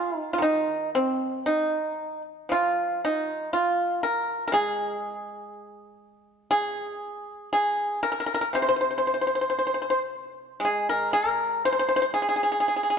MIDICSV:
0, 0, Header, 1, 2, 480
1, 0, Start_track
1, 0, Tempo, 1043478
1, 183, Time_signature, 2, 2, 24, 8
1, 1628, Tempo, 1001669
1, 4028, Tempo, 1032702
1, 6092, End_track
2, 0, Start_track
2, 0, Title_t, "Pipa"
2, 0, Program_c, 0, 105
2, 0, Note_on_c, 0, 65, 65
2, 74, Note_off_c, 0, 65, 0
2, 74, Note_on_c, 0, 63, 65
2, 139, Note_off_c, 0, 63, 0
2, 153, Note_on_c, 0, 65, 57
2, 176, Note_on_c, 0, 51, 47
2, 184, Note_off_c, 0, 65, 0
2, 194, Note_on_c, 0, 63, 69
2, 410, Note_off_c, 0, 63, 0
2, 437, Note_on_c, 0, 60, 70
2, 657, Note_off_c, 0, 60, 0
2, 672, Note_on_c, 0, 63, 65
2, 1019, Note_off_c, 0, 63, 0
2, 1146, Note_on_c, 0, 53, 45
2, 1158, Note_on_c, 0, 65, 69
2, 1380, Note_off_c, 0, 65, 0
2, 1401, Note_on_c, 0, 63, 65
2, 1616, Note_off_c, 0, 63, 0
2, 1624, Note_on_c, 0, 65, 64
2, 1626, Note_off_c, 0, 51, 0
2, 1850, Note_off_c, 0, 65, 0
2, 1864, Note_on_c, 0, 70, 66
2, 2059, Note_off_c, 0, 70, 0
2, 2077, Note_on_c, 0, 70, 57
2, 2098, Note_on_c, 0, 56, 51
2, 2103, Note_off_c, 0, 70, 0
2, 2105, Note_on_c, 0, 68, 75
2, 2581, Note_off_c, 0, 53, 0
2, 3041, Note_off_c, 0, 68, 0
2, 3050, Note_on_c, 0, 68, 84
2, 3519, Note_off_c, 0, 68, 0
2, 3538, Note_off_c, 0, 56, 0
2, 3539, Note_on_c, 0, 68, 70
2, 3767, Note_off_c, 0, 68, 0
2, 3779, Note_on_c, 0, 70, 71
2, 3816, Note_off_c, 0, 70, 0
2, 3822, Note_on_c, 0, 70, 51
2, 3855, Note_off_c, 0, 70, 0
2, 3862, Note_on_c, 0, 70, 58
2, 3887, Note_off_c, 0, 70, 0
2, 3892, Note_on_c, 0, 70, 56
2, 3925, Note_off_c, 0, 70, 0
2, 3931, Note_on_c, 0, 70, 60
2, 3957, Note_off_c, 0, 70, 0
2, 3963, Note_on_c, 0, 70, 53
2, 3996, Note_off_c, 0, 70, 0
2, 4020, Note_on_c, 0, 48, 51
2, 4029, Note_on_c, 0, 72, 75
2, 4057, Note_off_c, 0, 72, 0
2, 4063, Note_on_c, 0, 72, 51
2, 4087, Note_off_c, 0, 72, 0
2, 4092, Note_on_c, 0, 72, 56
2, 4122, Note_off_c, 0, 72, 0
2, 4128, Note_on_c, 0, 72, 42
2, 4144, Note_off_c, 0, 72, 0
2, 4149, Note_on_c, 0, 72, 51
2, 4189, Note_off_c, 0, 72, 0
2, 4194, Note_on_c, 0, 72, 45
2, 4223, Note_off_c, 0, 72, 0
2, 4228, Note_on_c, 0, 72, 50
2, 4265, Note_off_c, 0, 72, 0
2, 4271, Note_on_c, 0, 72, 40
2, 4297, Note_off_c, 0, 72, 0
2, 4303, Note_on_c, 0, 72, 46
2, 4332, Note_off_c, 0, 72, 0
2, 4338, Note_on_c, 0, 72, 42
2, 4358, Note_off_c, 0, 72, 0
2, 4364, Note_on_c, 0, 72, 44
2, 4396, Note_off_c, 0, 72, 0
2, 4402, Note_on_c, 0, 72, 43
2, 4424, Note_off_c, 0, 72, 0
2, 4430, Note_on_c, 0, 72, 44
2, 4464, Note_off_c, 0, 72, 0
2, 4470, Note_on_c, 0, 72, 41
2, 4505, Note_off_c, 0, 72, 0
2, 4511, Note_on_c, 0, 72, 43
2, 4543, Note_off_c, 0, 72, 0
2, 4549, Note_on_c, 0, 72, 36
2, 4578, Note_off_c, 0, 72, 0
2, 4583, Note_on_c, 0, 72, 47
2, 4613, Note_off_c, 0, 72, 0
2, 4619, Note_on_c, 0, 72, 39
2, 4652, Note_off_c, 0, 72, 0
2, 4657, Note_on_c, 0, 72, 47
2, 4693, Note_off_c, 0, 72, 0
2, 4982, Note_on_c, 0, 56, 54
2, 5004, Note_on_c, 0, 68, 65
2, 5113, Note_off_c, 0, 68, 0
2, 5118, Note_on_c, 0, 70, 77
2, 5223, Note_off_c, 0, 70, 0
2, 5229, Note_on_c, 0, 70, 82
2, 5455, Note_off_c, 0, 70, 0
2, 5471, Note_off_c, 0, 48, 0
2, 5471, Note_on_c, 0, 72, 78
2, 5499, Note_off_c, 0, 72, 0
2, 5505, Note_on_c, 0, 72, 59
2, 5531, Note_off_c, 0, 72, 0
2, 5537, Note_on_c, 0, 72, 68
2, 5573, Note_off_c, 0, 72, 0
2, 5580, Note_on_c, 0, 72, 61
2, 5609, Note_off_c, 0, 72, 0
2, 5615, Note_on_c, 0, 72, 70
2, 5636, Note_off_c, 0, 72, 0
2, 5641, Note_on_c, 0, 72, 63
2, 5677, Note_off_c, 0, 72, 0
2, 5697, Note_on_c, 0, 68, 69
2, 5729, Note_off_c, 0, 68, 0
2, 5735, Note_on_c, 0, 68, 49
2, 5761, Note_off_c, 0, 68, 0
2, 5766, Note_on_c, 0, 68, 55
2, 5794, Note_off_c, 0, 68, 0
2, 5800, Note_on_c, 0, 68, 45
2, 5827, Note_off_c, 0, 68, 0
2, 5833, Note_on_c, 0, 68, 50
2, 5868, Note_off_c, 0, 68, 0
2, 5873, Note_on_c, 0, 68, 47
2, 5907, Note_off_c, 0, 68, 0
2, 5912, Note_on_c, 0, 68, 53
2, 5944, Note_off_c, 0, 68, 0
2, 5949, Note_on_c, 0, 68, 42
2, 5982, Note_off_c, 0, 68, 0
2, 5987, Note_on_c, 0, 68, 49
2, 6014, Note_off_c, 0, 68, 0
2, 6020, Note_on_c, 0, 68, 43
2, 6046, Note_off_c, 0, 68, 0
2, 6051, Note_on_c, 0, 68, 51
2, 6078, Note_off_c, 0, 68, 0
2, 6092, Note_off_c, 0, 56, 0
2, 6092, End_track
0, 0, End_of_file